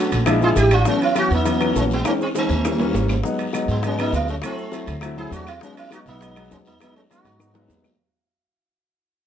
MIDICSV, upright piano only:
0, 0, Header, 1, 2, 480
1, 0, Start_track
1, 0, Key_signature, 4, "major"
1, 0, Tempo, 297177
1, 1397, Time_signature, 4, 2, 24, 8
1, 14962, End_track
2, 0, Start_track
2, 0, Title_t, "Upright piano"
2, 0, Program_c, 0, 0
2, 0, Note_on_c, 0, 57, 75
2, 0, Note_on_c, 0, 61, 67
2, 0, Note_on_c, 0, 62, 66
2, 0, Note_on_c, 0, 66, 78
2, 293, Note_off_c, 0, 57, 0
2, 293, Note_off_c, 0, 61, 0
2, 296, Note_off_c, 0, 62, 0
2, 296, Note_off_c, 0, 66, 0
2, 422, Note_on_c, 0, 53, 93
2, 424, Note_on_c, 0, 56, 88
2, 424, Note_on_c, 0, 62, 83
2, 425, Note_on_c, 0, 64, 107
2, 597, Note_off_c, 0, 53, 0
2, 598, Note_off_c, 0, 56, 0
2, 598, Note_off_c, 0, 62, 0
2, 599, Note_off_c, 0, 64, 0
2, 665, Note_on_c, 0, 53, 83
2, 668, Note_on_c, 0, 56, 74
2, 668, Note_on_c, 0, 64, 92
2, 669, Note_on_c, 0, 62, 77
2, 1175, Note_off_c, 0, 53, 0
2, 1176, Note_off_c, 0, 56, 0
2, 1176, Note_off_c, 0, 64, 0
2, 1177, Note_off_c, 0, 62, 0
2, 1380, Note_on_c, 0, 54, 67
2, 1383, Note_on_c, 0, 52, 70
2, 1385, Note_on_c, 0, 59, 67
2, 1390, Note_on_c, 0, 61, 83
2, 1724, Note_off_c, 0, 54, 0
2, 1726, Note_off_c, 0, 52, 0
2, 1727, Note_off_c, 0, 59, 0
2, 1729, Note_off_c, 0, 61, 0
2, 1868, Note_on_c, 0, 54, 72
2, 1870, Note_on_c, 0, 61, 86
2, 1871, Note_on_c, 0, 52, 69
2, 1873, Note_on_c, 0, 59, 72
2, 2208, Note_off_c, 0, 54, 0
2, 2209, Note_off_c, 0, 61, 0
2, 2210, Note_off_c, 0, 52, 0
2, 2211, Note_off_c, 0, 59, 0
2, 2354, Note_on_c, 0, 52, 79
2, 2355, Note_on_c, 0, 59, 72
2, 2356, Note_on_c, 0, 54, 74
2, 2357, Note_on_c, 0, 61, 85
2, 2523, Note_off_c, 0, 52, 0
2, 2523, Note_off_c, 0, 59, 0
2, 2524, Note_off_c, 0, 54, 0
2, 2525, Note_off_c, 0, 61, 0
2, 2589, Note_on_c, 0, 52, 89
2, 2591, Note_on_c, 0, 54, 80
2, 2593, Note_on_c, 0, 59, 84
2, 2593, Note_on_c, 0, 61, 92
2, 3096, Note_off_c, 0, 52, 0
2, 3098, Note_off_c, 0, 54, 0
2, 3098, Note_off_c, 0, 59, 0
2, 3098, Note_off_c, 0, 61, 0
2, 3315, Note_on_c, 0, 52, 75
2, 3315, Note_on_c, 0, 61, 83
2, 3318, Note_on_c, 0, 60, 63
2, 3319, Note_on_c, 0, 56, 64
2, 3651, Note_off_c, 0, 52, 0
2, 3652, Note_off_c, 0, 61, 0
2, 3653, Note_off_c, 0, 60, 0
2, 3654, Note_off_c, 0, 56, 0
2, 3792, Note_on_c, 0, 52, 70
2, 3794, Note_on_c, 0, 60, 68
2, 3795, Note_on_c, 0, 56, 63
2, 3801, Note_on_c, 0, 61, 83
2, 4130, Note_off_c, 0, 52, 0
2, 4131, Note_off_c, 0, 56, 0
2, 4131, Note_off_c, 0, 60, 0
2, 4134, Note_off_c, 0, 61, 0
2, 4280, Note_on_c, 0, 55, 65
2, 4281, Note_on_c, 0, 52, 71
2, 4281, Note_on_c, 0, 58, 68
2, 4282, Note_on_c, 0, 61, 80
2, 4446, Note_off_c, 0, 55, 0
2, 4447, Note_off_c, 0, 52, 0
2, 4447, Note_off_c, 0, 58, 0
2, 4447, Note_off_c, 0, 61, 0
2, 4513, Note_on_c, 0, 55, 89
2, 4514, Note_on_c, 0, 58, 87
2, 4515, Note_on_c, 0, 52, 92
2, 4523, Note_on_c, 0, 61, 107
2, 5019, Note_off_c, 0, 55, 0
2, 5019, Note_off_c, 0, 58, 0
2, 5020, Note_off_c, 0, 52, 0
2, 5024, Note_off_c, 0, 61, 0
2, 5244, Note_on_c, 0, 54, 82
2, 5246, Note_on_c, 0, 56, 79
2, 5248, Note_on_c, 0, 59, 82
2, 5251, Note_on_c, 0, 63, 90
2, 5576, Note_off_c, 0, 54, 0
2, 5577, Note_off_c, 0, 56, 0
2, 5578, Note_off_c, 0, 59, 0
2, 5580, Note_off_c, 0, 63, 0
2, 5717, Note_on_c, 0, 56, 75
2, 5719, Note_on_c, 0, 59, 75
2, 5721, Note_on_c, 0, 54, 88
2, 5721, Note_on_c, 0, 63, 91
2, 6053, Note_off_c, 0, 56, 0
2, 6054, Note_off_c, 0, 59, 0
2, 6055, Note_off_c, 0, 54, 0
2, 6055, Note_off_c, 0, 63, 0
2, 6198, Note_on_c, 0, 54, 73
2, 6200, Note_on_c, 0, 56, 70
2, 6201, Note_on_c, 0, 59, 74
2, 6203, Note_on_c, 0, 63, 81
2, 6365, Note_off_c, 0, 54, 0
2, 6366, Note_off_c, 0, 56, 0
2, 6366, Note_off_c, 0, 59, 0
2, 6368, Note_off_c, 0, 63, 0
2, 6430, Note_on_c, 0, 54, 84
2, 6433, Note_on_c, 0, 59, 75
2, 6436, Note_on_c, 0, 56, 76
2, 6440, Note_on_c, 0, 63, 96
2, 6937, Note_off_c, 0, 54, 0
2, 6939, Note_off_c, 0, 59, 0
2, 6941, Note_off_c, 0, 56, 0
2, 6943, Note_off_c, 0, 63, 0
2, 7153, Note_on_c, 0, 60, 67
2, 7156, Note_on_c, 0, 64, 80
2, 7157, Note_on_c, 0, 57, 61
2, 7158, Note_on_c, 0, 54, 73
2, 7491, Note_off_c, 0, 60, 0
2, 7493, Note_off_c, 0, 54, 0
2, 7493, Note_off_c, 0, 57, 0
2, 7493, Note_off_c, 0, 64, 0
2, 7622, Note_on_c, 0, 54, 72
2, 7624, Note_on_c, 0, 60, 70
2, 7626, Note_on_c, 0, 64, 83
2, 7627, Note_on_c, 0, 57, 71
2, 7966, Note_off_c, 0, 54, 0
2, 7966, Note_off_c, 0, 60, 0
2, 7968, Note_off_c, 0, 57, 0
2, 7968, Note_off_c, 0, 64, 0
2, 8107, Note_on_c, 0, 54, 93
2, 8111, Note_on_c, 0, 57, 87
2, 8112, Note_on_c, 0, 60, 78
2, 8117, Note_on_c, 0, 64, 102
2, 8280, Note_off_c, 0, 54, 0
2, 8282, Note_off_c, 0, 57, 0
2, 8282, Note_off_c, 0, 60, 0
2, 8285, Note_off_c, 0, 64, 0
2, 8350, Note_on_c, 0, 60, 80
2, 8351, Note_on_c, 0, 54, 86
2, 8352, Note_on_c, 0, 57, 80
2, 8353, Note_on_c, 0, 64, 93
2, 8858, Note_off_c, 0, 54, 0
2, 8858, Note_off_c, 0, 60, 0
2, 8859, Note_off_c, 0, 57, 0
2, 8859, Note_off_c, 0, 64, 0
2, 9071, Note_on_c, 0, 54, 73
2, 9072, Note_on_c, 0, 56, 66
2, 9072, Note_on_c, 0, 63, 80
2, 9074, Note_on_c, 0, 59, 61
2, 9410, Note_off_c, 0, 54, 0
2, 9411, Note_off_c, 0, 56, 0
2, 9411, Note_off_c, 0, 63, 0
2, 9412, Note_off_c, 0, 59, 0
2, 9550, Note_on_c, 0, 59, 70
2, 9551, Note_on_c, 0, 63, 76
2, 9555, Note_on_c, 0, 54, 72
2, 9555, Note_on_c, 0, 56, 66
2, 9890, Note_off_c, 0, 59, 0
2, 9890, Note_off_c, 0, 63, 0
2, 9892, Note_off_c, 0, 54, 0
2, 9892, Note_off_c, 0, 56, 0
2, 10038, Note_on_c, 0, 56, 73
2, 10043, Note_on_c, 0, 54, 77
2, 10044, Note_on_c, 0, 59, 73
2, 10045, Note_on_c, 0, 63, 93
2, 10206, Note_off_c, 0, 56, 0
2, 10209, Note_off_c, 0, 54, 0
2, 10209, Note_off_c, 0, 59, 0
2, 10209, Note_off_c, 0, 63, 0
2, 10278, Note_on_c, 0, 63, 93
2, 10279, Note_on_c, 0, 54, 89
2, 10279, Note_on_c, 0, 56, 80
2, 10281, Note_on_c, 0, 59, 78
2, 10782, Note_off_c, 0, 63, 0
2, 10783, Note_off_c, 0, 54, 0
2, 10783, Note_off_c, 0, 56, 0
2, 10784, Note_off_c, 0, 59, 0
2, 11003, Note_on_c, 0, 54, 70
2, 11004, Note_on_c, 0, 56, 67
2, 11005, Note_on_c, 0, 59, 70
2, 11006, Note_on_c, 0, 63, 77
2, 11337, Note_off_c, 0, 54, 0
2, 11337, Note_off_c, 0, 56, 0
2, 11337, Note_off_c, 0, 59, 0
2, 11338, Note_off_c, 0, 63, 0
2, 11482, Note_on_c, 0, 54, 73
2, 11483, Note_on_c, 0, 59, 69
2, 11485, Note_on_c, 0, 56, 65
2, 11485, Note_on_c, 0, 63, 75
2, 11816, Note_off_c, 0, 54, 0
2, 11816, Note_off_c, 0, 59, 0
2, 11817, Note_off_c, 0, 56, 0
2, 11817, Note_off_c, 0, 63, 0
2, 11959, Note_on_c, 0, 59, 65
2, 11960, Note_on_c, 0, 54, 72
2, 11961, Note_on_c, 0, 56, 66
2, 11965, Note_on_c, 0, 63, 88
2, 12127, Note_off_c, 0, 54, 0
2, 12127, Note_off_c, 0, 59, 0
2, 12128, Note_off_c, 0, 56, 0
2, 12130, Note_off_c, 0, 63, 0
2, 12186, Note_on_c, 0, 54, 101
2, 12193, Note_on_c, 0, 56, 95
2, 12193, Note_on_c, 0, 63, 109
2, 12194, Note_on_c, 0, 59, 96
2, 12696, Note_off_c, 0, 54, 0
2, 12700, Note_off_c, 0, 56, 0
2, 12700, Note_off_c, 0, 59, 0
2, 12700, Note_off_c, 0, 63, 0
2, 14962, End_track
0, 0, End_of_file